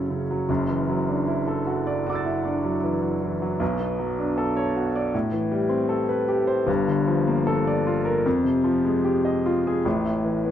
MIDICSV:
0, 0, Header, 1, 2, 480
1, 0, Start_track
1, 0, Tempo, 793651
1, 296, Time_signature, 4, 2, 24, 8
1, 1256, Tempo, 762389
1, 3656, Tempo, 790514
1, 6463, End_track
2, 0, Start_track
2, 0, Title_t, "Grand piano"
2, 0, Program_c, 0, 0
2, 0, Control_c, 0, 64, 127
2, 0, Note_on_c, 0, 30, 50
2, 0, Note_on_c, 0, 42, 59
2, 0, Note_on_c, 0, 49, 48
2, 0, Note_on_c, 0, 54, 41
2, 0, Note_on_c, 0, 61, 48
2, 0, Note_on_c, 0, 64, 42
2, 0, Note_on_c, 0, 66, 45
2, 0, Note_on_c, 0, 69, 48
2, 0, Note_on_c, 0, 73, 56
2, 62, Note_off_c, 0, 49, 0
2, 62, Note_on_c, 0, 49, 50
2, 133, Note_off_c, 0, 54, 0
2, 186, Note_on_c, 0, 54, 51
2, 251, Note_off_c, 0, 49, 0
2, 265, Note_off_c, 0, 30, 0
2, 268, Note_off_c, 0, 42, 0
2, 297, Note_on_c, 0, 30, 64
2, 300, Note_off_c, 0, 54, 0
2, 304, Note_on_c, 0, 42, 62
2, 306, Control_c, 0, 64, 0
2, 307, Note_off_c, 0, 61, 0
2, 307, Note_off_c, 0, 69, 0
2, 307, Note_off_c, 0, 73, 0
2, 308, Note_off_c, 0, 64, 0
2, 311, Note_off_c, 0, 66, 0
2, 389, Control_c, 0, 64, 127
2, 420, Note_on_c, 0, 52, 48
2, 539, Note_on_c, 0, 54, 54
2, 608, Note_off_c, 0, 52, 0
2, 656, Note_on_c, 0, 62, 49
2, 729, Note_off_c, 0, 54, 0
2, 771, Note_on_c, 0, 64, 56
2, 848, Note_off_c, 0, 62, 0
2, 893, Note_on_c, 0, 69, 52
2, 967, Note_off_c, 0, 64, 0
2, 1009, Note_on_c, 0, 66, 51
2, 1088, Note_off_c, 0, 69, 0
2, 1130, Note_on_c, 0, 74, 59
2, 1205, Note_off_c, 0, 66, 0
2, 1249, Note_on_c, 0, 66, 54
2, 1249, Note_on_c, 0, 78, 43
2, 1269, Note_on_c, 0, 86, 43
2, 1288, Note_on_c, 0, 88, 43
2, 1305, Note_on_c, 0, 93, 39
2, 1326, Note_off_c, 0, 74, 0
2, 1367, Note_on_c, 0, 64, 53
2, 1447, Note_off_c, 0, 66, 0
2, 1490, Note_on_c, 0, 62, 52
2, 1565, Note_off_c, 0, 64, 0
2, 1613, Note_on_c, 0, 54, 54
2, 1687, Note_off_c, 0, 62, 0
2, 1733, Note_on_c, 0, 52, 54
2, 1808, Note_off_c, 0, 54, 0
2, 1852, Note_on_c, 0, 54, 44
2, 1928, Note_off_c, 0, 52, 0
2, 1977, Note_on_c, 0, 52, 55
2, 2047, Note_off_c, 0, 54, 0
2, 2101, Note_on_c, 0, 54, 57
2, 2170, Note_off_c, 0, 52, 0
2, 2190, Note_off_c, 0, 78, 0
2, 2194, Note_off_c, 0, 30, 0
2, 2198, Note_off_c, 0, 42, 0
2, 2200, Note_off_c, 0, 86, 0
2, 2210, Note_off_c, 0, 88, 0
2, 2212, Note_on_c, 0, 35, 65
2, 2218, Note_off_c, 0, 93, 0
2, 2220, Note_off_c, 0, 54, 0
2, 2223, Note_on_c, 0, 47, 73
2, 2230, Control_c, 0, 64, 0
2, 2310, Control_c, 0, 64, 127
2, 2338, Note_on_c, 0, 59, 58
2, 2461, Note_on_c, 0, 54, 55
2, 2533, Note_off_c, 0, 59, 0
2, 2584, Note_on_c, 0, 62, 51
2, 2654, Note_off_c, 0, 54, 0
2, 2704, Note_on_c, 0, 69, 64
2, 2775, Note_off_c, 0, 62, 0
2, 2823, Note_on_c, 0, 73, 58
2, 2895, Note_off_c, 0, 69, 0
2, 2946, Note_on_c, 0, 66, 54
2, 3014, Note_off_c, 0, 73, 0
2, 3068, Note_on_c, 0, 74, 67
2, 3136, Note_off_c, 0, 66, 0
2, 3153, Note_off_c, 0, 35, 0
2, 3158, Note_off_c, 0, 47, 0
2, 3184, Note_off_c, 0, 74, 0
2, 3187, Note_on_c, 0, 45, 67
2, 3192, Control_c, 0, 64, 0
2, 3273, Control_c, 0, 64, 127
2, 3297, Note_on_c, 0, 52, 59
2, 3421, Note_on_c, 0, 55, 61
2, 3488, Note_off_c, 0, 52, 0
2, 3532, Note_on_c, 0, 60, 60
2, 3610, Note_off_c, 0, 55, 0
2, 3657, Note_on_c, 0, 69, 58
2, 3726, Note_off_c, 0, 60, 0
2, 3777, Note_on_c, 0, 71, 59
2, 3846, Note_off_c, 0, 69, 0
2, 3896, Note_on_c, 0, 67, 61
2, 3967, Note_off_c, 0, 71, 0
2, 4011, Note_on_c, 0, 72, 67
2, 4087, Note_off_c, 0, 67, 0
2, 4113, Note_off_c, 0, 45, 0
2, 4128, Note_on_c, 0, 31, 65
2, 4133, Note_off_c, 0, 72, 0
2, 4135, Note_on_c, 0, 43, 74
2, 4146, Control_c, 0, 64, 0
2, 4245, Control_c, 0, 64, 127
2, 4257, Note_on_c, 0, 50, 55
2, 4376, Note_on_c, 0, 53, 60
2, 4451, Note_off_c, 0, 50, 0
2, 4497, Note_on_c, 0, 58, 58
2, 4571, Note_off_c, 0, 53, 0
2, 4615, Note_on_c, 0, 69, 66
2, 4691, Note_off_c, 0, 58, 0
2, 4740, Note_on_c, 0, 74, 62
2, 4809, Note_off_c, 0, 69, 0
2, 4857, Note_on_c, 0, 65, 61
2, 4929, Note_off_c, 0, 74, 0
2, 4968, Note_on_c, 0, 70, 64
2, 5047, Note_off_c, 0, 65, 0
2, 5067, Note_off_c, 0, 31, 0
2, 5070, Note_off_c, 0, 43, 0
2, 5090, Note_off_c, 0, 70, 0
2, 5094, Note_on_c, 0, 41, 72
2, 5102, Control_c, 0, 64, 0
2, 5206, Control_c, 0, 64, 127
2, 5206, Note_on_c, 0, 48, 57
2, 5327, Note_on_c, 0, 53, 64
2, 5402, Note_off_c, 0, 48, 0
2, 5452, Note_on_c, 0, 56, 60
2, 5525, Note_off_c, 0, 53, 0
2, 5572, Note_on_c, 0, 67, 64
2, 5650, Note_off_c, 0, 56, 0
2, 5696, Note_on_c, 0, 75, 54
2, 5771, Note_off_c, 0, 67, 0
2, 5824, Note_on_c, 0, 65, 65
2, 5893, Note_off_c, 0, 75, 0
2, 5953, Note_on_c, 0, 68, 65
2, 6017, Note_off_c, 0, 65, 0
2, 6039, Note_off_c, 0, 41, 0
2, 6063, Note_on_c, 0, 33, 64
2, 6068, Note_off_c, 0, 68, 0
2, 6069, Note_on_c, 0, 45, 68
2, 6072, Control_c, 0, 64, 0
2, 6169, Control_c, 0, 64, 127
2, 6184, Note_on_c, 0, 57, 52
2, 6300, Note_on_c, 0, 52, 54
2, 6371, Note_off_c, 0, 57, 0
2, 6422, Note_on_c, 0, 59, 51
2, 6463, Note_off_c, 0, 33, 0
2, 6463, Note_off_c, 0, 45, 0
2, 6463, Note_off_c, 0, 52, 0
2, 6463, Note_off_c, 0, 59, 0
2, 6463, End_track
0, 0, End_of_file